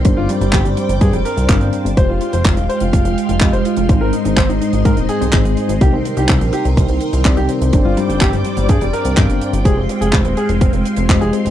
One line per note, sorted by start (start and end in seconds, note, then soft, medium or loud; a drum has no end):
0.05 0.15 G1 loud
0.05 1.46 G2 medium
0.05 1.46 G3 medium
0.05 1.46 C4 medium
0.05 0.16 C4 medium
0.05 1.46 D4 medium
0.05 1.46 C5 medium
0.05 1.95 C5 medium
0.05 1.95 D5 medium
0.05 1.95 G5 medium
0.05 1.95 D6 medium
0.05 kick loud
0.05 closed hi-hat medium
0.17 0.27 G1 medium
0.17 0.28 F4 medium
0.29 0.40 G3 medium
0.29 closed hi-hat medium
0.41 0.51 G1 medium
0.41 0.52 G3 medium
0.41 closed hi-hat medium
0.53 0.63 G1 loud
0.53 0.64 G4 medium
0.53 kick loud
0.53 clap loud
0.53 closed hi-hat medium
0.65 0.75 G1 medium
0.65 0.76 G3 medium
0.65 closed hi-hat medium
0.77 0.88 G3 medium
0.77 closed hi-hat medium
0.89 0.99 G1 medium
0.89 1.00 G3 medium
0.89 closed hi-hat medium
1.01 1.11 G2 medium
1.01 1.12 G#4 medium
1.01 kick loud
1.01 closed hi-hat medium
1.13 1.23 F1 medium
1.13 1.24 G3 medium
1.13 closed hi-hat soft
1.25 1.88 A#4 medium
1.25 closed hi-hat medium
1.37 1.47 C2 medium
1.37 closed hi-hat medium
1.49 1.59 G1 loud
1.49 1.94 G2 medium
1.49 1.94 G3 medium
1.49 1.94 C4 medium
1.49 1.94 D4 medium
1.49 1.94 F5 medium
1.49 kick loud
1.49 clap loud
1.49 closed hi-hat medium
1.61 1.71 G1 medium
1.61 closed hi-hat soft
1.73 closed hi-hat medium
1.85 1.95 G1 medium
1.85 closed hi-hat medium
1.97 2.07 F1 loud
1.97 3.38 G#3 medium
1.97 5.77 G#3 medium
1.97 3.38 F4 medium
1.97 3.38 G4 medium
1.97 3.38 C5 medium
1.97 2.08 C5 medium
1.97 3.87 F5 medium
1.97 3.87 G5 medium
1.97 5.77 C6 medium
1.97 kick loud
1.97 closed hi-hat medium
2.09 2.19 F1 medium
2.09 2.20 F4 medium
2.21 2.32 F4 medium
2.21 closed hi-hat medium
2.33 2.43 F1 medium
2.33 2.44 C5 medium
2.33 closed hi-hat medium
2.44 2.55 F1 loud
2.44 2.56 F4 medium
2.44 kick loud
2.44 clap loud
2.44 closed hi-hat medium
2.57 2.67 D#1 medium
2.57 2.68 F4 medium
2.57 closed hi-hat soft
2.69 2.80 C5 medium
2.69 closed hi-hat medium
2.80 2.91 F1 medium
2.80 2.92 F4 medium
2.80 closed hi-hat medium
2.93 3.03 F1 loud
2.93 3.04 F4 medium
2.93 kick loud
2.93 closed hi-hat medium
3.05 3.15 F1 medium
3.05 3.16 F4 medium
3.05 closed hi-hat medium
3.18 closed hi-hat medium
3.29 3.39 F1 medium
3.29 3.40 F4 medium
3.29 closed hi-hat medium
3.40 3.51 F1 loud
3.40 3.86 G#3 medium
3.40 3.86 F4 medium
3.40 3.52 F4 medium
3.40 3.86 G4 medium
3.40 3.86 D#5 medium
3.40 kick loud
3.40 clap loud
3.40 closed hi-hat medium
3.53 3.63 F1 medium
3.53 3.64 C5 medium
3.53 closed hi-hat soft
3.65 3.76 F4 medium
3.65 closed hi-hat medium
3.77 3.88 F1 medium
3.77 3.88 F4 medium
3.77 closed hi-hat medium
3.89 3.99 G#1 medium
3.89 5.19 G#2 medium
3.89 5.19 G#3 medium
3.89 5.19 C4 medium
3.89 5.19 D#4 medium
3.89 4.00 F4 medium
3.89 5.79 C5 medium
3.89 5.19 C5 medium
3.89 5.79 D#5 medium
3.89 kick loud
3.89 closed hi-hat medium
4.01 4.11 G#1 medium
4.01 4.12 A#4 medium
4.13 4.24 D#4 medium
4.13 closed hi-hat medium
4.25 4.35 G#1 medium
4.25 4.36 D#4 medium
4.25 closed hi-hat medium
4.37 4.47 G#1 medium
4.37 4.48 C5 medium
4.37 kick loud
4.37 clap loud
4.37 closed hi-hat medium
4.49 4.59 G#1 medium
4.49 4.59 D#4 medium
4.49 closed hi-hat soft
4.61 4.71 D#4 medium
4.61 closed hi-hat medium
4.73 4.83 G#1 medium
4.73 4.84 D#4 medium
4.73 closed hi-hat medium
4.85 4.95 G#2 loud
4.85 4.96 A#4 medium
4.85 kick loud
4.85 closed hi-hat medium
4.97 5.07 D#1 medium
4.97 5.08 D#4 medium
4.97 closed hi-hat soft
5.09 5.71 G#4 medium
5.09 closed hi-hat medium
5.21 5.31 C2 medium
5.21 5.78 G#2 medium
5.21 5.78 G#3 medium
5.21 5.78 C4 medium
5.21 5.78 D#4 medium
5.21 5.78 C5 medium
5.21 closed hi-hat medium
5.33 5.43 G#1 loud
5.33 kick loud
5.33 clap loud
5.33 closed hi-hat medium
5.45 5.55 G#1 medium
5.45 closed hi-hat soft
5.57 closed hi-hat medium
5.69 5.79 G#1 medium
5.69 closed hi-hat medium
5.81 5.91 C2 medium
5.81 7.22 C3 medium
5.81 7.22 G3 medium
5.81 7.22 C4 medium
5.81 7.71 D#4 medium
5.81 7.22 D#4 medium
5.81 5.92 G4 medium
5.81 7.71 A#4 medium
5.81 7.22 A#4 medium
5.81 11.50 G5 medium
5.81 7.71 C6 medium
5.81 kick loud
5.81 closed hi-hat medium
5.93 6.03 C2 medium
5.93 6.04 C4 medium
6.05 6.16 C4 medium
6.05 closed hi-hat medium
6.17 6.27 C2 medium
6.17 6.28 G4 medium
6.17 closed hi-hat medium
6.28 6.39 C2 loud
6.28 6.39 C4 medium
6.28 kick loud
6.28 clap loud
6.28 closed hi-hat medium
6.41 6.51 A#1 medium
6.41 6.52 C4 medium
6.41 closed hi-hat medium
6.53 6.64 G4 medium
6.53 closed hi-hat medium
6.65 6.75 C2 medium
6.65 6.75 C4 medium
6.65 closed hi-hat medium
6.77 6.87 C2 loud
6.77 6.87 C4 medium
6.77 kick loud
6.77 closed hi-hat medium
6.88 6.99 C2 medium
6.88 7.00 C4 medium
6.88 closed hi-hat soft
7.01 closed hi-hat medium
7.13 7.23 C2 medium
7.13 7.24 C4 medium
7.13 closed hi-hat medium
7.25 7.35 C2 loud
7.25 7.70 C3 medium
7.25 7.70 G3 medium
7.25 7.70 C4 medium
7.25 7.36 C4 medium
7.25 7.70 D#4 medium
7.25 7.70 D5 medium
7.25 kick loud
7.25 clap loud
7.25 closed hi-hat medium
7.37 7.47 C2 medium
7.37 7.48 G4 medium
7.37 closed hi-hat soft
7.49 7.60 C4 medium
7.49 closed hi-hat medium
7.61 7.71 C2 medium
7.61 7.72 C4 medium
7.61 closed hi-hat medium
7.73 7.83 G1 loud
7.73 9.14 G2 medium
7.73 9.14 G3 medium
7.73 7.84 C4 medium
7.73 9.14 C4 medium
7.73 9.14 D4 medium
7.73 9.14 C5 medium
7.73 9.63 C5 medium
7.73 9.63 D5 medium
7.73 9.63 D6 medium
7.73 kick loud
7.73 closed hi-hat medium
7.85 7.95 G1 medium
7.85 7.96 F4 medium
7.97 8.08 G3 medium
7.97 closed hi-hat medium
8.09 8.19 G1 medium
8.09 8.20 G3 medium
8.09 closed hi-hat medium
8.21 8.31 G1 loud
8.21 8.32 G4 medium
8.21 kick loud
8.21 clap loud
8.21 closed hi-hat medium
8.33 8.43 G1 medium
8.33 8.44 G3 medium
8.33 closed hi-hat medium
8.45 8.56 G3 medium
8.45 closed hi-hat medium
8.57 8.67 G1 medium
8.57 8.68 G3 medium
8.57 closed hi-hat medium
8.69 8.79 G2 loud
8.69 8.80 G#4 medium
8.69 kick loud
8.69 closed hi-hat medium
8.81 8.91 F1 medium
8.81 8.92 G3 medium
8.81 closed hi-hat medium
8.93 9.56 A#4 medium
8.93 closed hi-hat medium
9.05 9.15 C2 medium
9.05 closed hi-hat medium
9.17 9.27 G1 loud
9.17 9.62 G2 medium
9.17 9.62 G3 medium
9.17 9.62 C4 medium
9.17 9.62 D4 medium
9.17 9.62 F5 medium
9.17 kick loud
9.17 clap loud
9.17 closed hi-hat medium
9.29 9.39 G1 medium
9.29 closed hi-hat soft
9.41 closed hi-hat medium
9.53 9.63 G1 medium
9.53 closed hi-hat medium
9.65 9.75 F1 loud
9.65 11.06 G#3 medium
9.65 11.50 G#3 medium
9.65 11.06 F4 medium
9.65 11.06 G4 medium
9.65 9.76 G#4 medium
9.65 11.06 C5 medium
9.65 11.50 F5 medium
9.65 11.50 C6 medium
9.65 kick loud
9.65 closed hi-hat medium
9.77 9.87 F1 medium
9.77 9.88 C4 medium
9.89 10.00 C4 medium
9.89 closed hi-hat medium
10.01 10.11 F1 medium
10.01 10.12 G#4 medium
10.01 closed hi-hat medium
10.13 10.23 F1 loud
10.13 10.24 C4 medium
10.13 kick loud
10.13 clap loud
10.13 closed hi-hat medium
10.25 10.35 D#1 medium
10.25 10.36 C4 medium
10.25 closed hi-hat medium
10.37 10.48 G#4 medium
10.37 closed hi-hat medium
10.49 10.59 F1 medium
10.49 10.60 C4 medium
10.49 closed hi-hat medium
10.61 10.71 F1 loud
10.61 10.72 C4 medium
10.61 kick loud
10.61 closed hi-hat medium
10.73 10.83 F1 medium
10.73 10.84 C4 medium
10.73 closed hi-hat soft
10.85 closed hi-hat medium
10.96 11.07 F1 medium
10.96 11.08 C4 medium
10.96 closed hi-hat medium
11.09 11.19 F1 loud
11.09 11.50 G#3 medium
11.09 11.20 C4 medium
11.09 11.50 F4 medium
11.09 11.50 G4 medium
11.09 11.50 D#5 medium
11.09 kick loud
11.09 clap loud
11.09 closed hi-hat medium
11.21 11.31 F1 medium
11.21 11.32 G#4 medium
11.21 closed hi-hat soft
11.33 11.44 C4 medium
11.33 closed hi-hat medium
11.45 11.50 F1 medium
11.45 11.50 C4 medium
11.45 closed hi-hat medium